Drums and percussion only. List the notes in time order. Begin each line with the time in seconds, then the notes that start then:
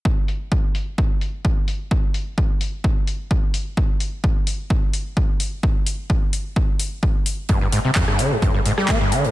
0.05 kick
0.28 open hi-hat
0.52 kick
0.75 open hi-hat
0.98 kick
1.21 open hi-hat
1.45 kick
1.68 open hi-hat
1.91 kick
2.14 open hi-hat
2.38 kick
2.61 open hi-hat
2.84 kick
3.07 open hi-hat
3.31 kick
3.54 open hi-hat
3.77 kick
4.00 open hi-hat
4.24 kick
4.47 open hi-hat
4.70 kick
4.93 open hi-hat
5.17 kick
5.40 open hi-hat
5.63 kick
5.86 open hi-hat
6.10 kick
6.33 open hi-hat
6.56 kick
6.80 open hi-hat
7.03 kick
7.26 open hi-hat
7.49 kick, closed hi-hat
7.72 closed hi-hat, open hi-hat
7.95 kick, snare, clap, closed hi-hat
8.08 cross-stick
8.19 closed hi-hat, open hi-hat
8.42 kick, closed hi-hat
8.65 closed hi-hat, open hi-hat
8.77 cross-stick, snare
8.88 kick, snare, clap, closed hi-hat
9.12 closed hi-hat, open hi-hat
9.24 closed hi-hat